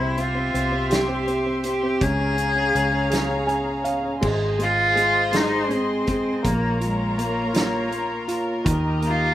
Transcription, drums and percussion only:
0.17 closed hi-hat
0.55 closed hi-hat
0.91 snare, closed hi-hat
1.28 closed hi-hat
1.64 closed hi-hat
2.01 kick, closed hi-hat
2.38 closed hi-hat
2.75 closed hi-hat
3.11 snare, closed hi-hat
3.49 closed hi-hat
3.85 closed hi-hat
4.22 kick, crash
4.60 closed hi-hat
4.97 closed hi-hat
5.33 snare, closed hi-hat
5.71 closed hi-hat
6.07 kick, closed hi-hat
6.45 kick, closed hi-hat
6.81 closed hi-hat
7.19 closed hi-hat
7.54 snare, closed hi-hat
7.92 closed hi-hat
8.29 closed hi-hat
8.66 kick, closed hi-hat
9.02 closed hi-hat

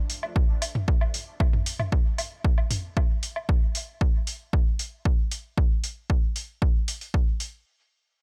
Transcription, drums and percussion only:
0.10 open hi-hat
0.23 low woodblock
0.36 kick
0.62 open hi-hat, low woodblock
0.75 mid tom
0.88 kick
1.01 low woodblock
1.14 open hi-hat
1.40 kick, low woodblock
1.53 mid tom
1.66 open hi-hat
1.80 mid tom, low woodblock
1.92 kick
2.18 open hi-hat, low woodblock
2.44 kick
2.58 low woodblock
2.71 mid tom, open hi-hat
2.97 kick, low woodblock
3.23 open hi-hat
3.36 low woodblock
3.49 kick
3.75 open hi-hat
4.01 kick
4.27 open hi-hat
4.53 kick
4.79 open hi-hat
5.05 kick
5.31 open hi-hat
5.58 kick
5.84 open hi-hat
6.10 kick
6.36 open hi-hat
6.62 kick
6.88 open hi-hat
7.01 open hi-hat
7.14 kick
7.40 open hi-hat

